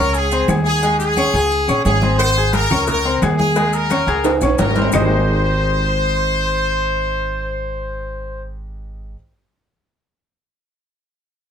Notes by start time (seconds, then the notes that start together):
Already playing: C#2 C#4 A#4 C#5 C#6
0.14 G#4, high conga, maracas
0.31 C4 C5 C6, high conga, low agogo, maracas
0.48 D#2 G#4 G#5 G#6, high conga, low timbale, low agogo, claves, maracas
0.65 G#4, maracas
0.82 G#3 G#4 G#5, high conga, low agogo, maracas
0.98 G#4, high conga, maracas
1.17 C#4 C#5 C#6, high conga, low agogo, claves, maracas
1.33 C#2 G#4 G#5 G#6, high conga, low agogo, maracas
1.51 high conga, maracas
1.68 A#1 C#4 C#5 C#6, high conga, low agogo, claves, maracas
1.84 G#1 G#4, high conga, low timbale, low agogo, maracas
2.02 C4 C5 C6, high conga, maracas
2.18 C5, cowbell, high conga, low agogo, claves, maracas
2.36 G#4 G#5 G#6, high conga
2.53 A#4, cowbell, high conga, low agogo, maracas
2.71 C#2 C#4 C#5 C#6, high conga, low conga, low agogo, claves, maracas
2.87 A#4, cowbell, high conga, low conga, maracas
3.05 C4 C5 C6, high conga, low agogo
3.22 D#2 G#4 G#5 G#6, cowbell, high conga, low timbale, low agogo, claves, maracas
3.38 G#4, high conga, maracas
3.56 G#3 G#4 G#5, cowbell, high conga, low agogo, maracas
3.73 A#4, high conga, maracas
3.90 C#4 C#5 C#6, cowbell, high conga, low agogo, claves, maracas
4.07 C#2 G#4 G#5 G#6, cowbell, high conga, low agogo, maracas
4.24 cowbell, high bongo, high conga, high timbale, maracas
4.41 A#1 C#4 C#5 C#6, low bongo, high conga, low agogo, claves, maracas
4.47 high timbale
4.58 G#1 A#4, cowbell, low bongo, high conga, low timbale, low agogo, maracas
4.71 low timbale
4.76 C4 C5 C6, cowbell, low bongo, high conga, maracas
4.82 low timbale
4.92 G#1 G#3 D#4 G4 G#4 C5 D#5, low bongo, low conga, low timbale, claves, maracas